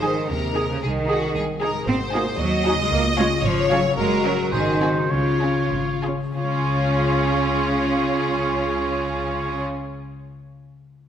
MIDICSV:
0, 0, Header, 1, 9, 480
1, 0, Start_track
1, 0, Key_signature, -5, "major"
1, 0, Tempo, 527704
1, 750, Time_signature, 2, 2, 24, 8
1, 3622, Tempo, 567108
1, 4582, Tempo, 627615
1, 9148, End_track
2, 0, Start_track
2, 0, Title_t, "Cor anglais"
2, 0, Program_c, 0, 69
2, 20, Note_on_c, 0, 75, 37
2, 108, Note_off_c, 0, 75, 0
2, 510, Note_on_c, 0, 75, 38
2, 597, Note_off_c, 0, 75, 0
2, 991, Note_on_c, 0, 75, 39
2, 1078, Note_off_c, 0, 75, 0
2, 1470, Note_on_c, 0, 75, 41
2, 1556, Note_off_c, 0, 75, 0
2, 1942, Note_on_c, 0, 75, 45
2, 2027, Note_off_c, 0, 75, 0
2, 2411, Note_on_c, 0, 75, 46
2, 2498, Note_off_c, 0, 75, 0
2, 2886, Note_on_c, 0, 73, 45
2, 2974, Note_off_c, 0, 73, 0
2, 3368, Note_on_c, 0, 73, 46
2, 3458, Note_off_c, 0, 73, 0
2, 3607, Note_on_c, 0, 70, 52
2, 4077, Note_on_c, 0, 72, 50
2, 4090, Note_off_c, 0, 70, 0
2, 4574, Note_on_c, 0, 73, 44
2, 4586, Note_off_c, 0, 72, 0
2, 5290, Note_off_c, 0, 73, 0
2, 5535, Note_on_c, 0, 73, 43
2, 8031, Note_off_c, 0, 73, 0
2, 9148, End_track
3, 0, Start_track
3, 0, Title_t, "Violin section"
3, 0, Program_c, 1, 48
3, 33, Note_on_c, 1, 68, 46
3, 33, Note_on_c, 1, 80, 44
3, 209, Note_off_c, 1, 68, 0
3, 209, Note_off_c, 1, 80, 0
3, 519, Note_on_c, 1, 68, 46
3, 519, Note_on_c, 1, 80, 45
3, 694, Note_off_c, 1, 80, 0
3, 695, Note_off_c, 1, 68, 0
3, 1005, Note_on_c, 1, 80, 47
3, 1006, Note_on_c, 1, 68, 46
3, 1177, Note_off_c, 1, 80, 0
3, 1178, Note_off_c, 1, 68, 0
3, 1467, Note_on_c, 1, 68, 50
3, 1471, Note_on_c, 1, 80, 51
3, 1645, Note_off_c, 1, 68, 0
3, 1647, Note_off_c, 1, 80, 0
3, 1947, Note_on_c, 1, 68, 52
3, 1947, Note_on_c, 1, 80, 52
3, 2121, Note_off_c, 1, 68, 0
3, 2121, Note_off_c, 1, 80, 0
3, 2411, Note_on_c, 1, 68, 53
3, 2412, Note_on_c, 1, 80, 55
3, 2591, Note_off_c, 1, 68, 0
3, 2592, Note_off_c, 1, 80, 0
3, 2893, Note_on_c, 1, 68, 55
3, 2896, Note_on_c, 1, 77, 54
3, 3072, Note_off_c, 1, 68, 0
3, 3074, Note_off_c, 1, 77, 0
3, 3378, Note_on_c, 1, 68, 61
3, 3379, Note_on_c, 1, 77, 56
3, 3559, Note_off_c, 1, 68, 0
3, 3560, Note_off_c, 1, 77, 0
3, 3852, Note_on_c, 1, 70, 51
3, 3852, Note_on_c, 1, 73, 53
3, 4028, Note_off_c, 1, 70, 0
3, 4028, Note_off_c, 1, 73, 0
3, 4332, Note_on_c, 1, 80, 50
3, 4333, Note_on_c, 1, 68, 45
3, 4517, Note_off_c, 1, 68, 0
3, 4517, Note_off_c, 1, 80, 0
3, 4811, Note_on_c, 1, 80, 40
3, 4813, Note_on_c, 1, 68, 39
3, 4989, Note_off_c, 1, 80, 0
3, 4990, Note_off_c, 1, 68, 0
3, 5292, Note_on_c, 1, 68, 38
3, 5292, Note_on_c, 1, 80, 38
3, 5473, Note_off_c, 1, 68, 0
3, 5473, Note_off_c, 1, 80, 0
3, 5539, Note_on_c, 1, 65, 43
3, 8035, Note_off_c, 1, 65, 0
3, 9148, End_track
4, 0, Start_track
4, 0, Title_t, "Violin section"
4, 0, Program_c, 2, 48
4, 0, Note_on_c, 2, 72, 47
4, 258, Note_off_c, 2, 72, 0
4, 266, Note_on_c, 2, 70, 49
4, 741, Note_off_c, 2, 70, 0
4, 752, Note_on_c, 2, 68, 46
4, 825, Note_off_c, 2, 68, 0
4, 991, Note_on_c, 2, 66, 48
4, 1226, Note_off_c, 2, 66, 0
4, 1229, Note_on_c, 2, 68, 46
4, 1302, Note_off_c, 2, 68, 0
4, 1468, Note_on_c, 2, 70, 52
4, 1701, Note_off_c, 2, 70, 0
4, 1713, Note_on_c, 2, 72, 57
4, 2173, Note_off_c, 2, 72, 0
4, 2173, Note_on_c, 2, 75, 72
4, 3131, Note_on_c, 2, 73, 67
4, 3132, Note_off_c, 2, 75, 0
4, 3612, Note_on_c, 2, 70, 61
4, 3619, Note_off_c, 2, 73, 0
4, 4075, Note_off_c, 2, 70, 0
4, 4075, Note_on_c, 2, 68, 53
4, 4318, Note_off_c, 2, 68, 0
4, 4321, Note_on_c, 2, 66, 42
4, 4389, Note_off_c, 2, 66, 0
4, 4563, Note_on_c, 2, 65, 43
4, 5271, Note_off_c, 2, 65, 0
4, 5526, Note_on_c, 2, 68, 43
4, 8022, Note_off_c, 2, 68, 0
4, 9148, End_track
5, 0, Start_track
5, 0, Title_t, "Clarinet"
5, 0, Program_c, 3, 71
5, 29, Note_on_c, 3, 68, 42
5, 115, Note_off_c, 3, 68, 0
5, 511, Note_on_c, 3, 68, 43
5, 598, Note_off_c, 3, 68, 0
5, 995, Note_on_c, 3, 68, 44
5, 1080, Note_off_c, 3, 68, 0
5, 1476, Note_on_c, 3, 68, 44
5, 1560, Note_off_c, 3, 68, 0
5, 1950, Note_on_c, 3, 66, 45
5, 2034, Note_off_c, 3, 66, 0
5, 2417, Note_on_c, 3, 66, 51
5, 2503, Note_off_c, 3, 66, 0
5, 2899, Note_on_c, 3, 65, 47
5, 2985, Note_off_c, 3, 65, 0
5, 3376, Note_on_c, 3, 65, 53
5, 3464, Note_off_c, 3, 65, 0
5, 3612, Note_on_c, 3, 66, 56
5, 4052, Note_off_c, 3, 66, 0
5, 4086, Note_on_c, 3, 66, 46
5, 4569, Note_off_c, 3, 66, 0
5, 4580, Note_on_c, 3, 65, 43
5, 5279, Note_off_c, 3, 65, 0
5, 5536, Note_on_c, 3, 65, 43
5, 8033, Note_off_c, 3, 65, 0
5, 9148, End_track
6, 0, Start_track
6, 0, Title_t, "Viola section"
6, 0, Program_c, 4, 48
6, 23, Note_on_c, 4, 63, 43
6, 23, Note_on_c, 4, 68, 42
6, 204, Note_off_c, 4, 63, 0
6, 204, Note_off_c, 4, 68, 0
6, 501, Note_on_c, 4, 68, 39
6, 503, Note_on_c, 4, 63, 39
6, 685, Note_off_c, 4, 68, 0
6, 686, Note_off_c, 4, 63, 0
6, 984, Note_on_c, 4, 68, 50
6, 986, Note_on_c, 4, 63, 49
6, 1166, Note_off_c, 4, 68, 0
6, 1167, Note_off_c, 4, 63, 0
6, 1470, Note_on_c, 4, 63, 49
6, 1472, Note_on_c, 4, 68, 47
6, 1646, Note_off_c, 4, 63, 0
6, 1647, Note_off_c, 4, 68, 0
6, 1942, Note_on_c, 4, 63, 55
6, 1942, Note_on_c, 4, 66, 54
6, 2118, Note_off_c, 4, 63, 0
6, 2118, Note_off_c, 4, 66, 0
6, 2412, Note_on_c, 4, 63, 54
6, 2412, Note_on_c, 4, 66, 53
6, 2592, Note_off_c, 4, 63, 0
6, 2592, Note_off_c, 4, 66, 0
6, 2892, Note_on_c, 4, 61, 54
6, 2895, Note_on_c, 4, 65, 59
6, 3072, Note_off_c, 4, 61, 0
6, 3074, Note_off_c, 4, 65, 0
6, 3376, Note_on_c, 4, 61, 51
6, 3376, Note_on_c, 4, 65, 51
6, 3558, Note_off_c, 4, 61, 0
6, 3558, Note_off_c, 4, 65, 0
6, 3849, Note_on_c, 4, 66, 51
6, 3851, Note_on_c, 4, 61, 50
6, 4026, Note_off_c, 4, 66, 0
6, 4027, Note_off_c, 4, 61, 0
6, 4326, Note_on_c, 4, 60, 43
6, 4328, Note_on_c, 4, 66, 42
6, 4514, Note_off_c, 4, 60, 0
6, 4514, Note_off_c, 4, 66, 0
6, 4811, Note_on_c, 4, 65, 41
6, 4814, Note_on_c, 4, 61, 41
6, 4989, Note_off_c, 4, 65, 0
6, 4991, Note_off_c, 4, 61, 0
6, 5287, Note_on_c, 4, 65, 35
6, 5289, Note_on_c, 4, 61, 37
6, 5470, Note_off_c, 4, 65, 0
6, 5471, Note_off_c, 4, 61, 0
6, 5527, Note_on_c, 4, 61, 49
6, 8023, Note_off_c, 4, 61, 0
6, 9148, End_track
7, 0, Start_track
7, 0, Title_t, "Harp"
7, 0, Program_c, 5, 46
7, 0, Note_on_c, 5, 44, 41
7, 0, Note_on_c, 5, 56, 35
7, 0, Note_on_c, 5, 63, 35
7, 0, Note_on_c, 5, 68, 36
7, 591, Note_on_c, 5, 48, 46
7, 620, Note_off_c, 5, 56, 0
7, 631, Note_on_c, 5, 56, 36
7, 661, Note_off_c, 5, 63, 0
7, 672, Note_on_c, 5, 63, 36
7, 688, Note_off_c, 5, 44, 0
7, 704, Note_off_c, 5, 68, 0
7, 715, Note_on_c, 5, 68, 39
7, 1543, Note_on_c, 5, 44, 50
7, 1572, Note_off_c, 5, 56, 0
7, 1583, Note_on_c, 5, 56, 42
7, 1615, Note_off_c, 5, 63, 0
7, 1626, Note_on_c, 5, 63, 42
7, 1646, Note_off_c, 5, 48, 0
7, 1665, Note_on_c, 5, 66, 43
7, 2494, Note_on_c, 5, 49, 53
7, 2522, Note_off_c, 5, 56, 0
7, 2533, Note_on_c, 5, 56, 41
7, 2573, Note_on_c, 5, 61, 44
7, 2592, Note_off_c, 5, 44, 0
7, 2616, Note_on_c, 5, 65, 47
7, 2633, Note_off_c, 5, 63, 0
7, 2653, Note_off_c, 5, 66, 0
7, 3456, Note_on_c, 5, 42, 53
7, 3497, Note_on_c, 5, 58, 43
7, 3528, Note_off_c, 5, 61, 0
7, 3539, Note_on_c, 5, 61, 45
7, 3561, Note_off_c, 5, 49, 0
7, 3579, Note_on_c, 5, 66, 42
7, 3580, Note_off_c, 5, 56, 0
7, 3621, Note_off_c, 5, 65, 0
7, 3623, Note_off_c, 5, 68, 0
7, 3934, Note_on_c, 5, 44, 44
7, 3972, Note_on_c, 5, 56, 33
7, 4010, Note_on_c, 5, 60, 34
7, 4031, Note_off_c, 5, 42, 0
7, 4038, Note_off_c, 5, 66, 0
7, 4048, Note_on_c, 5, 66, 36
7, 4050, Note_off_c, 5, 58, 0
7, 4070, Note_off_c, 5, 61, 0
7, 4424, Note_on_c, 5, 49, 42
7, 4454, Note_off_c, 5, 56, 0
7, 4464, Note_on_c, 5, 56, 35
7, 4500, Note_on_c, 5, 61, 33
7, 4524, Note_off_c, 5, 44, 0
7, 4539, Note_on_c, 5, 65, 34
7, 4562, Note_off_c, 5, 60, 0
7, 4581, Note_off_c, 5, 66, 0
7, 5483, Note_off_c, 5, 49, 0
7, 5534, Note_on_c, 5, 49, 37
7, 5578, Note_off_c, 5, 56, 0
7, 5587, Note_on_c, 5, 56, 39
7, 5632, Note_off_c, 5, 61, 0
7, 5642, Note_on_c, 5, 61, 40
7, 5686, Note_off_c, 5, 65, 0
7, 5696, Note_on_c, 5, 65, 38
7, 5749, Note_on_c, 5, 73, 38
7, 8138, Note_off_c, 5, 61, 0
7, 8192, Note_off_c, 5, 65, 0
7, 8223, Note_off_c, 5, 56, 0
7, 8246, Note_off_c, 5, 73, 0
7, 8517, Note_off_c, 5, 49, 0
7, 9148, End_track
8, 0, Start_track
8, 0, Title_t, "Cello section"
8, 0, Program_c, 6, 48
8, 20, Note_on_c, 6, 51, 50
8, 260, Note_off_c, 6, 51, 0
8, 264, Note_on_c, 6, 48, 54
8, 629, Note_off_c, 6, 48, 0
8, 640, Note_on_c, 6, 49, 54
8, 687, Note_off_c, 6, 49, 0
8, 749, Note_on_c, 6, 51, 62
8, 1221, Note_off_c, 6, 51, 0
8, 1706, Note_on_c, 6, 60, 76
8, 1779, Note_off_c, 6, 60, 0
8, 1945, Note_on_c, 6, 58, 71
8, 2017, Note_off_c, 6, 58, 0
8, 2179, Note_on_c, 6, 54, 77
8, 2529, Note_off_c, 6, 54, 0
8, 2545, Note_on_c, 6, 56, 71
8, 2654, Note_on_c, 6, 58, 85
8, 2657, Note_off_c, 6, 56, 0
8, 2727, Note_off_c, 6, 58, 0
8, 2891, Note_on_c, 6, 56, 70
8, 2963, Note_off_c, 6, 56, 0
8, 3132, Note_on_c, 6, 53, 69
8, 3367, Note_on_c, 6, 54, 69
8, 3370, Note_off_c, 6, 53, 0
8, 3439, Note_off_c, 6, 54, 0
8, 3619, Note_on_c, 6, 56, 79
8, 3846, Note_on_c, 6, 54, 70
8, 3847, Note_off_c, 6, 56, 0
8, 4084, Note_on_c, 6, 51, 66
8, 4086, Note_off_c, 6, 54, 0
8, 4568, Note_off_c, 6, 51, 0
8, 4572, Note_on_c, 6, 49, 52
8, 5039, Note_off_c, 6, 49, 0
8, 5528, Note_on_c, 6, 49, 54
8, 8024, Note_off_c, 6, 49, 0
8, 9148, End_track
9, 0, Start_track
9, 0, Title_t, "Double bass section"
9, 0, Program_c, 7, 48
9, 0, Note_on_c, 7, 32, 53
9, 164, Note_off_c, 7, 32, 0
9, 266, Note_on_c, 7, 39, 53
9, 649, Note_off_c, 7, 39, 0
9, 754, Note_on_c, 7, 36, 55
9, 1132, Note_off_c, 7, 36, 0
9, 1227, Note_on_c, 7, 36, 58
9, 1606, Note_off_c, 7, 36, 0
9, 1704, Note_on_c, 7, 32, 61
9, 2078, Note_off_c, 7, 32, 0
9, 2175, Note_on_c, 7, 39, 68
9, 2553, Note_off_c, 7, 39, 0
9, 2655, Note_on_c, 7, 37, 71
9, 3034, Note_off_c, 7, 37, 0
9, 3130, Note_on_c, 7, 32, 63
9, 3516, Note_off_c, 7, 32, 0
9, 3612, Note_on_c, 7, 30, 73
9, 3985, Note_off_c, 7, 30, 0
9, 4079, Note_on_c, 7, 32, 60
9, 4470, Note_off_c, 7, 32, 0
9, 4574, Note_on_c, 7, 37, 52
9, 4949, Note_off_c, 7, 37, 0
9, 5043, Note_on_c, 7, 32, 46
9, 5429, Note_off_c, 7, 32, 0
9, 5530, Note_on_c, 7, 37, 43
9, 8026, Note_off_c, 7, 37, 0
9, 9148, End_track
0, 0, End_of_file